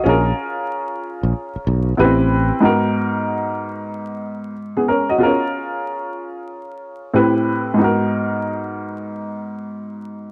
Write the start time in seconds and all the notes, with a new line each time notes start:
Already playing: F#4 D#5
0.04 A#1 C#4 F4 G#4
0.09 A#4
1.23 A#1
1.56 muted fretless electric bass stroke
1.67 B1
1.97 A1 B3 E4 G4 B4
2.04 C4
2.61 G#2 B3 D#4 F#4
2.65 A#4
4.77 B3 G#4
4.88 C#4 A#4
5.09 F#4 D#5
5.18 B3 F4 G#4
5.23 C#4 A#4
7.14 A2 C4 E4 G4 B4
7.74 G#2 B3
7.79 D#4 F#4
7.84 A#4